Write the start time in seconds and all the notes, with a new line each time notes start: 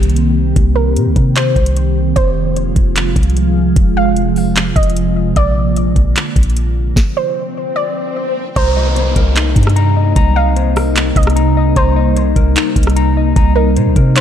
Already playing: C2 D#3 A#3 C4 G4
0.03 closed hi-hat
0.10 closed hi-hat
0.16 closed hi-hat
0.56 C2, kick, closed hi-hat
0.75 A#4
0.96 C3, closed hi-hat
1.06 C2
1.16 C3, kick, closed hi-hat
1.36 C5, clap, closed hi-hat
1.56 C2, kick, closed hi-hat
1.66 closed hi-hat
1.76 closed hi-hat
2.16 F1 C3 F3 G#3 F4 C5, kick, closed hi-hat
2.56 closed hi-hat
2.76 F1, kick, closed hi-hat
2.96 clap, closed hi-hat
3.16 C2, kick, closed hi-hat
3.23 closed hi-hat
3.30 closed hi-hat
3.37 closed hi-hat
3.76 F1, kick, closed hi-hat
3.97 F5
4.16 closed hi-hat
4.36 open hi-hat
4.56 clap, closed hi-hat
4.76 F1 D#5, kick, closed hi-hat
4.83 closed hi-hat
4.90 closed hi-hat
4.96 closed hi-hat
5.36 A#1 D3 A#3 D5, kick, closed hi-hat
5.76 closed hi-hat
5.96 A#1, kick, closed hi-hat
6.16 clap, closed hi-hat
6.36 A#1, kick, closed hi-hat
6.43 closed hi-hat
6.50 closed hi-hat
6.57 closed hi-hat
6.96 kick, snare, swell
7.17 C5
7.76 D5
8.56 C2 C3 G3 A#3 D#4 C5 A#5, kick, closed hi-hat, downlifter
8.76 D#5
8.96 C5, closed hi-hat
9.16 C2 A#4, kick, closed hi-hat
9.36 D#4, clap, closed hi-hat
9.56 G2, kick, closed hi-hat
9.63 closed hi-hat
9.67 cross-stick, closed hi-hat
9.76 A#5, closed hi-hat
9.96 D#5
10.16 C2 A#5, kick, closed hi-hat
10.36 D#5 F5
10.56 C5, closed hi-hat
10.76 A#4, cross-stick, open hi-hat
10.96 D#4, clap, closed hi-hat
11.16 C2 D#5, kick, closed hi-hat
11.23 closed hi-hat
11.27 cross-stick, closed hi-hat
11.36 A#5, closed hi-hat
11.57 D#5
11.76 C2 C5 A#5, kick, closed hi-hat
11.96 D#5
12.16 C5, closed hi-hat
12.36 C2 A#4, kick, closed hi-hat
12.56 D#4, clap, closed hi-hat
12.76 C2, kick, closed hi-hat
12.83 closed hi-hat
12.87 cross-stick, closed hi-hat
12.96 A#5, closed hi-hat
13.17 D#5
13.36 C2 A#5, kick, closed hi-hat
13.55 A#4 D#5
13.76 C3 C5, closed hi-hat
13.86 C2
13.96 C3 A#4, kick, closed hi-hat
14.16 D#4 C5, clap, closed hi-hat